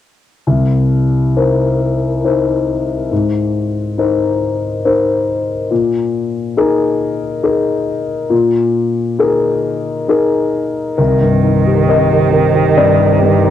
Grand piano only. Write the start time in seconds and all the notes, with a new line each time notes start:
0.47 C2
1.36 D#4 A#4 C5
2.24 D#4 A#4 C5
3.12 G#2
3.98 D#4 A#4 C5
4.85 D#4 A#4 C5
5.71 A#2
6.57 D#4 G#4 A#4
7.43 D#4 G#4 A#4
8.30 A#2
9.19 D#4 G#4 A#4
10.08 D#4 G#4 A#4
10.98 C2 A#4
11.21 G2
11.43 D#4
11.67 G4
11.89 A#4 D#5
12.11 G4
12.33 A#4
12.55 G4
12.77 G2 D5
12.99 D#4
13.22 G2
13.44 D#4